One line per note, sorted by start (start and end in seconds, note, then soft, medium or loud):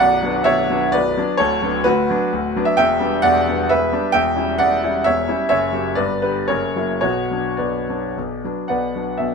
0.00 0.21 B0 medium
0.00 0.21 B1 medium
0.00 0.42 D5 medium
0.00 0.45 F#5 loud
0.23 0.44 F#3 soft
0.23 0.44 B3 medium
0.23 0.44 D4 medium
0.44 0.69 B0 medium
0.44 0.69 B1 medium
0.44 0.90 C#5 medium
0.44 0.93 E5 loud
0.70 0.91 F#3 medium
0.70 0.92 B3 medium
0.70 0.92 D4 medium
0.92 1.16 B0 medium
0.92 1.16 B1 medium
0.92 1.36 B4 medium
0.92 1.38 D5 loud
1.17 1.37 F#3 medium
1.17 1.37 B3 medium
1.17 1.38 D4 medium
1.37 1.61 D1 medium
1.37 1.61 D2 medium
1.37 1.82 A4 medium
1.37 1.84 C#5 loud
1.62 1.83 F#3 medium
1.62 1.83 B3 medium
1.62 1.84 D4 medium
1.84 2.09 D1 medium
1.84 2.09 D2 medium
1.84 2.63 F#4 medium
1.84 2.66 B4 loud
2.10 2.31 F#3 medium
2.10 2.31 B3 medium
2.10 2.31 D4 medium
2.33 2.55 D1 medium
2.33 2.55 D2 medium
2.56 2.76 F#3 medium
2.56 2.76 B3 medium
2.56 2.76 D4 medium
2.65 2.76 E5 medium
2.77 3.00 E1 medium
2.77 3.00 E2 medium
2.77 3.20 E5 loud
2.77 3.23 G5 loud
3.00 3.21 G3 medium
3.00 3.21 B3 medium
3.00 3.22 D4 medium
3.22 3.47 E1 medium
3.22 3.47 E2 medium
3.22 3.67 D5 medium
3.22 3.69 F#5 loud
3.48 3.68 G3 medium
3.48 3.68 B3 medium
3.48 3.69 D4 medium
3.69 3.92 E1 medium
3.69 3.92 E2 medium
3.69 4.10 B4 medium
3.69 4.12 E5 loud
3.92 4.12 G3 medium
3.92 4.12 B3 medium
3.92 4.12 D4 medium
4.12 4.35 E1 medium
4.12 4.35 E2 medium
4.12 4.56 E5 medium
4.12 4.59 G5 loud
4.36 4.57 G3 soft
4.36 4.57 C#4 soft
4.36 4.58 E4 medium
4.58 4.82 E1 medium
4.58 4.82 E2 medium
4.58 5.02 D5 medium
4.58 5.05 F#5 loud
4.84 5.03 G3 soft
4.84 5.03 C#4 medium
4.84 5.04 E4 medium
5.04 5.28 E1 medium
5.04 5.27 E2 medium
5.04 5.47 C#5 medium
5.04 5.48 E5 loud
5.28 5.48 G3 medium
5.28 5.48 C#4 medium
5.28 5.48 E4 medium
5.49 5.72 F#1 medium
5.49 5.72 F#2 medium
5.49 5.93 C#5 medium
5.49 5.96 E5 loud
5.72 5.94 F#3 soft
5.72 5.94 A#3 soft
5.72 5.95 G4 medium
5.95 6.22 G1 medium
5.95 6.22 G2 medium
5.95 6.21 B4 medium
5.95 6.22 D5 medium
6.22 6.47 D3 soft
6.22 6.47 B3 soft
6.22 6.47 G4 medium
6.22 6.49 B4 medium
6.48 6.75 F#1 medium
6.48 6.75 F#2 medium
6.48 6.99 A#4 medium
6.48 6.99 C#5 medium
6.76 7.01 F#3 soft
6.76 7.01 A#3 soft
6.76 7.01 E4 soft
7.01 7.30 B1 medium
7.01 7.30 B2 medium
7.01 7.55 F#4 medium
7.01 7.58 C#5 medium
7.31 7.57 F#3 soft
7.31 7.57 B3 soft
7.31 7.57 D4 soft
7.57 7.87 B1 soft
7.57 7.88 B2 soft
7.57 8.39 B4 soft
7.57 8.43 D5 medium
7.89 8.14 F#3 soft
7.89 8.14 B3 soft
7.89 8.15 D4 soft
8.18 8.44 B1 soft
8.18 8.44 B2 soft
8.44 8.67 F#3 soft
8.44 8.68 B3 soft
8.44 8.68 D4 soft
8.68 8.93 B1 soft
8.68 8.93 B2 medium
8.68 9.15 B4 medium
8.68 9.15 D5 medium
8.68 9.18 F#5 medium
8.96 9.17 F#3 soft
8.96 9.17 B3 soft
8.96 9.18 D4 soft
9.18 9.35 B1 soft
9.18 9.35 B2 soft
9.18 9.35 E5 medium